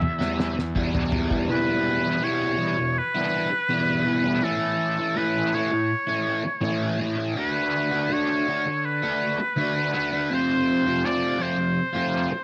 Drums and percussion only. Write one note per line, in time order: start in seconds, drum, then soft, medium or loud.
0.02 mid tom medium
0.21 snare medium
0.40 snare medium
0.59 snare medium
0.76 kick medium
0.95 floor tom medium
1.12 floor tom loud
1.31 kick medium